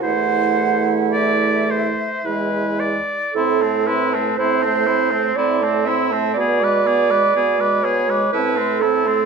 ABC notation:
X:1
M:3/4
L:1/16
Q:1/4=60
K:Am
V:1 name="Flute"
^f4 e6 z2 | c' a c' a c' a c' a c' a c' a | b d' b d' b d' b d' a c' a c' |]
V:2 name="Clarinet"
E8 E2 z2 | A2 B2 c4 d2 e2 | d6 ^c2 B2 A2 |]
V:3 name="Oboe"
c4 d2 c2 B2 d2 | E C E C E C E C E C E C | ^G B G B G B G B E C E C |]
V:4 name="French horn"
A,8 ^G,3 z | C A, C A, C A, C A, C A, C A, | B, ^G, B, G, B, G, B, G, C A, C A, |]
V:5 name="Bassoon" clef=bass
E,,6 z2 E,,2 z2 | A,,4 A,,4 A,,4 | B,,4 B,,4 A,,4 |]